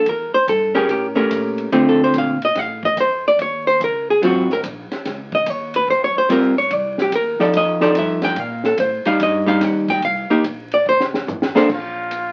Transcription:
0.06 upright bass E2, hollow-body jazz guitar A#4, kick, ride
0.32 hollow-body jazz guitar C5, muted upright bass stroke
0.47 upright bass G2, hollow-body jazz guitar A4, kick, hi-hat pedal, ride
0.75 hollow-body jazz guitar C#4 G4 G#4 A#4
0.89 upright bass A2, hollow-body jazz guitar G4, kick, ride
1.15 hollow-body jazz guitar A3 C#4 G4 A#4
1.30 upright bass A#2, kick, hi-hat pedal, ride
1.58 ride
1.72 upright bass D3, hollow-body jazz guitar D3 A3 C4 F4, kick, ride
1.89 hollow-body jazz guitar A4
1.98 muted upright bass stroke
2.04 hollow-body jazz guitar C5
2.14 upright bass A#2, kick, hi-hat pedal, ride
2.18 hollow-body jazz guitar F5
2.42 hollow-body jazz guitar D#5, ride
2.55 upright bass A2, hollow-body jazz guitar F5, kick, snare, ride
2.83 hollow-body jazz guitar D#5, kick
2.97 upright bass F2, hollow-body jazz guitar C5, kick, hi-hat pedal, ride
3.28 hollow-body jazz guitar D5
3.39 upright bass D#2, hollow-body jazz guitar C#5, kick, ride
3.67 hollow-body jazz guitar C5
3.80 upright bass C#2, hollow-body jazz guitar A#4, kick, hi-hat pedal, ride
4.10 hollow-body jazz guitar G#4
4.22 upright bass G#1, hollow-body jazz guitar F#3 C4 F4 F#4, kick, ride
4.50 hollow-body jazz guitar A#4, snare
4.63 upright bass A#1, kick, hi-hat pedal, ride
4.91 muted upright bass stroke, snare, ride
5.05 upright bass C#2, kick, snare, ride
5.32 hollow-body jazz guitar D#5, kick
5.46 upright bass D#2, hollow-body jazz guitar C#5, kick, hi-hat pedal, ride
5.74 hollow-body jazz guitar B4, ride
5.88 upright bass F2, hollow-body jazz guitar C5, kick
6.04 hollow-body jazz guitar C#5
6.15 hollow-body jazz guitar C5, muted upright bass stroke
6.29 upright bass G2, hollow-body jazz guitar G3 C4 F4 A#4, kick, hi-hat pedal, ride
6.58 hollow-body jazz guitar C#5
6.71 upright bass C2, hollow-body jazz guitar D5, kick, ride
6.98 hollow-body jazz guitar G4, snare
7.12 upright bass D#2, hollow-body jazz guitar A#4, kick, hi-hat pedal, ride
7.39 hollow-body jazz guitar F3 D#4 A4 D5, muted upright bass stroke, snare
7.53 upright bass F2, hollow-body jazz guitar D#5, kick, ride
7.81 hollow-body jazz guitar F3 D#4 A4 D5, snare
7.95 upright bass G2, hollow-body jazz guitar E5, kick, hi-hat pedal, ride
8.22 hollow-body jazz guitar G5, snare, ride
8.36 upright bass A#2, hollow-body jazz guitar F5, kick, ride
8.64 hollow-body jazz guitar A4, snare
8.78 upright bass A2, hollow-body jazz guitar C5, kick, hi-hat pedal, ride
9.05 hollow-body jazz guitar G3 D#4 F5, muted upright bass stroke, ride
9.19 upright bass G2, hollow-body jazz guitar D#5, kick, ride
9.46 hollow-body jazz guitar G3 D#4 F5
9.60 upright bass D#2, hollow-body jazz guitar F#5, kick, snare, hi-hat pedal, ride
9.88 hollow-body jazz guitar G5, kick, ride
10.02 upright bass C2, hollow-body jazz guitar F5, kick, ride
10.30 hollow-body jazz guitar A#3 D#4 G4
10.44 upright bass A#1, kick, hi-hat pedal, ride
10.72 hollow-body jazz guitar D5, ride
10.86 upright bass F1, hollow-body jazz guitar C5
11.00 snare
11.14 snare
11.27 upright bass A1, floor tom, hi-hat pedal
11.42 snare
11.54 hollow-body jazz guitar A#3 D4 A4 C5, muted upright bass stroke, snare
11.69 upright bass A#1, muted trumpet F4, kick, crash
12.11 hi-hat pedal, ride

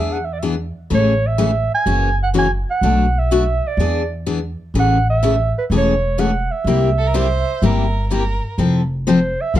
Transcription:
Already playing: upright bass E2, steel-string acoustic guitar E3 B3 D4 G#4, clarinet E5
0.12 clarinet F#5
0.24 clarinet E5
0.33 clarinet D5
0.39 steel-string acoustic guitar E3 B3 D4 G#4, clarinet E5
0.90 upright bass A1, steel-string acoustic guitar C#3 E3 A3 C#4 G#4
0.94 clarinet C#5
1.27 clarinet E5
1.38 steel-string acoustic guitar C#3 E3 A3 C#4 G#4
1.75 clarinet G#5
1.86 upright bass F#1, steel-string acoustic guitar C#3 E3 A#3 C#4 F#4
2.23 clarinet F#5
2.34 steel-string acoustic guitar C#3 E3 A#3 C#4 F#4
2.39 clarinet G#5
2.71 clarinet F#5
2.81 upright bass B1, steel-string acoustic guitar B2 F#3 A3 D4 F#4
3.19 clarinet E5
3.31 steel-string acoustic guitar B2 F#3 A3 D4 F#4
3.67 clarinet D5
3.77 upright bass E2, steel-string acoustic guitar E3 B3 D4 G#4
4.26 steel-string acoustic guitar E3 B3 D4 G#4
4.74 upright bass A1, steel-string acoustic guitar C#3 E3 A3 C#4 G#4
4.79 clarinet F#5
5.10 clarinet E5
5.23 steel-string acoustic guitar C#3 E3 A3 C#4 G#4
5.58 clarinet B4
5.70 upright bass E1, steel-string acoustic guitar C#3 E3 A3 C#4 G#4
5.77 clarinet C#5
6.18 steel-string acoustic guitar C#3 E3 A3 C#4 G#4, clarinet F#5
6.51 clarinet E5
6.64 upright bass C2, steel-string acoustic guitar C3 G3 A#3 E4 G4
6.98 violin A4
7.07 violin A#4
7.14 steel-string acoustic guitar C3 G3 A#3 E4 G4, violin C5
7.62 upright bass G1, steel-string acoustic guitar C3 G3 A#3 E4 G4, violin A#4
8.10 steel-string acoustic guitar C3 G3 A#3 E4 G4, violin A#4
8.58 upright bass F1, steel-string acoustic guitar F3 C4 E4 A4
9.07 steel-string acoustic guitar F3 C4 E4 A4, clarinet C5
9.41 clarinet E5
9.54 upright bass C2, steel-string acoustic guitar F3 C4 E4 A4

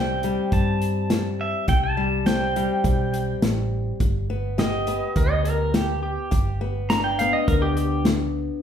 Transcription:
Already playing: fingered electric bass C2, steel-string acoustic guitar E3 G3 C4, pedal steel guitar G5
0.23 steel-string acoustic guitar G3, closed hi-hat
0.52 fingered electric bass G2, steel-string acoustic guitar G2, pedal steel guitar A5, kick, closed hi-hat
0.82 closed hi-hat
1.10 steel-string acoustic guitar E3, snare, closed hi-hat
1.41 pedal steel guitar E5
1.68 fingered electric bass C2, steel-string acoustic guitar C3, pedal steel guitar G5, kick, closed hi-hat
1.84 pedal steel guitar A5
1.97 steel-string acoustic guitar G3
2.26 steel-string acoustic guitar E3 C4, pedal steel guitar G5, snare, closed hi-hat
2.56 steel-string acoustic guitar G3, closed hi-hat
2.84 fingered electric bass B1, steel-string acoustic guitar G2, kick, closed hi-hat
3.14 closed hi-hat
3.42 fingered electric bass A1, steel-string acoustic guitar E3, snare, closed hi-hat
4.00 fingered electric bass G1, steel-string acoustic guitar G2, kick, closed hi-hat
4.30 steel-string acoustic guitar B3
4.58 steel-string acoustic guitar D3 G4, pedal steel guitar D#5, snare, closed hi-hat
4.87 steel-string acoustic guitar B3, closed hi-hat
5.16 fingered electric bass D2, steel-string acoustic guitar G2, pedal steel guitar A#4, kick, closed hi-hat
5.31 pedal steel guitar D#5
5.45 pedal steel guitar A#4, closed hi-hat
5.74 steel-string acoustic guitar D3, pedal steel guitar G4, snare, closed hi-hat
6.03 pedal steel guitar G4
6.31 fingered electric bass G1, steel-string acoustic guitar G2, kick, closed hi-hat
6.61 steel-string acoustic guitar B3
6.90 steel-string acoustic guitar D3 D4, pedal steel guitar A#5, snare, closed hi-hat
7.04 pedal steel guitar G5
7.19 steel-string acoustic guitar B3, pedal steel guitar F5, closed hi-hat
7.33 pedal steel guitar D#5
7.48 fingered electric bass D2, steel-string acoustic guitar G2, pedal steel guitar A#4, kick, closed hi-hat
7.62 pedal steel guitar G4
7.77 pedal steel guitar G4, closed hi-hat
8.05 steel-string acoustic guitar D3, snare, closed hi-hat

